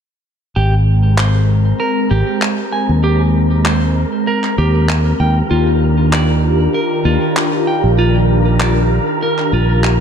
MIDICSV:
0, 0, Header, 1, 6, 480
1, 0, Start_track
1, 0, Tempo, 618557
1, 438, Time_signature, 4, 2, 24, 8
1, 7762, End_track
2, 0, Start_track
2, 0, Title_t, "Synth texture"
2, 0, Program_c, 0, 99
2, 431, Note_on_c, 0, 70, 81
2, 433, Note_on_c, 0, 82, 79
2, 7762, Note_off_c, 0, 70, 0
2, 7762, Note_off_c, 0, 82, 0
2, 7762, End_track
3, 0, Start_track
3, 0, Title_t, "Clean electric guitar"
3, 0, Program_c, 1, 27
3, 436, Note_on_c, 1, 67, 86
3, 573, Note_off_c, 1, 67, 0
3, 918, Note_on_c, 1, 72, 65
3, 1147, Note_off_c, 1, 72, 0
3, 1395, Note_on_c, 1, 70, 87
3, 1614, Note_off_c, 1, 70, 0
3, 1635, Note_on_c, 1, 67, 81
3, 1854, Note_off_c, 1, 67, 0
3, 2115, Note_on_c, 1, 80, 65
3, 2253, Note_off_c, 1, 80, 0
3, 2356, Note_on_c, 1, 67, 90
3, 2493, Note_off_c, 1, 67, 0
3, 2837, Note_on_c, 1, 72, 63
3, 3066, Note_off_c, 1, 72, 0
3, 3316, Note_on_c, 1, 70, 89
3, 3535, Note_off_c, 1, 70, 0
3, 3555, Note_on_c, 1, 67, 85
3, 3774, Note_off_c, 1, 67, 0
3, 4035, Note_on_c, 1, 79, 63
3, 4173, Note_off_c, 1, 79, 0
3, 4273, Note_on_c, 1, 65, 89
3, 4412, Note_off_c, 1, 65, 0
3, 4758, Note_on_c, 1, 74, 65
3, 4987, Note_off_c, 1, 74, 0
3, 5233, Note_on_c, 1, 70, 88
3, 5453, Note_off_c, 1, 70, 0
3, 5473, Note_on_c, 1, 65, 84
3, 5693, Note_off_c, 1, 65, 0
3, 5955, Note_on_c, 1, 79, 62
3, 6093, Note_off_c, 1, 79, 0
3, 6196, Note_on_c, 1, 65, 89
3, 6333, Note_off_c, 1, 65, 0
3, 6679, Note_on_c, 1, 74, 65
3, 6907, Note_off_c, 1, 74, 0
3, 7159, Note_on_c, 1, 70, 92
3, 7376, Note_off_c, 1, 70, 0
3, 7398, Note_on_c, 1, 65, 86
3, 7616, Note_off_c, 1, 65, 0
3, 7762, End_track
4, 0, Start_track
4, 0, Title_t, "Analog synth pad"
4, 0, Program_c, 2, 89
4, 433, Note_on_c, 2, 56, 69
4, 434, Note_on_c, 2, 60, 69
4, 4005, Note_off_c, 2, 56, 0
4, 4005, Note_off_c, 2, 60, 0
4, 4030, Note_on_c, 2, 51, 76
4, 4031, Note_on_c, 2, 62, 74
4, 4031, Note_on_c, 2, 65, 65
4, 4031, Note_on_c, 2, 67, 80
4, 7762, Note_off_c, 2, 51, 0
4, 7762, Note_off_c, 2, 62, 0
4, 7762, Note_off_c, 2, 65, 0
4, 7762, Note_off_c, 2, 67, 0
4, 7762, End_track
5, 0, Start_track
5, 0, Title_t, "Fingered electric bass"
5, 0, Program_c, 3, 33
5, 438, Note_on_c, 3, 32, 78
5, 1334, Note_off_c, 3, 32, 0
5, 1637, Note_on_c, 3, 32, 71
5, 1720, Note_off_c, 3, 32, 0
5, 2245, Note_on_c, 3, 39, 70
5, 3133, Note_off_c, 3, 39, 0
5, 3556, Note_on_c, 3, 39, 87
5, 3973, Note_off_c, 3, 39, 0
5, 4034, Note_on_c, 3, 39, 80
5, 4196, Note_off_c, 3, 39, 0
5, 4275, Note_on_c, 3, 39, 84
5, 5172, Note_off_c, 3, 39, 0
5, 5472, Note_on_c, 3, 39, 74
5, 5557, Note_off_c, 3, 39, 0
5, 6082, Note_on_c, 3, 34, 72
5, 6971, Note_off_c, 3, 34, 0
5, 7394, Note_on_c, 3, 34, 88
5, 7762, Note_off_c, 3, 34, 0
5, 7762, End_track
6, 0, Start_track
6, 0, Title_t, "Drums"
6, 915, Note_on_c, 9, 39, 90
6, 993, Note_off_c, 9, 39, 0
6, 1876, Note_on_c, 9, 39, 94
6, 1954, Note_off_c, 9, 39, 0
6, 2835, Note_on_c, 9, 39, 91
6, 2912, Note_off_c, 9, 39, 0
6, 3443, Note_on_c, 9, 39, 27
6, 3520, Note_off_c, 9, 39, 0
6, 3796, Note_on_c, 9, 39, 88
6, 3873, Note_off_c, 9, 39, 0
6, 4756, Note_on_c, 9, 39, 90
6, 4833, Note_off_c, 9, 39, 0
6, 5715, Note_on_c, 9, 39, 95
6, 5793, Note_off_c, 9, 39, 0
6, 6674, Note_on_c, 9, 39, 90
6, 6752, Note_off_c, 9, 39, 0
6, 7282, Note_on_c, 9, 39, 26
6, 7360, Note_off_c, 9, 39, 0
6, 7635, Note_on_c, 9, 39, 83
6, 7713, Note_off_c, 9, 39, 0
6, 7762, End_track
0, 0, End_of_file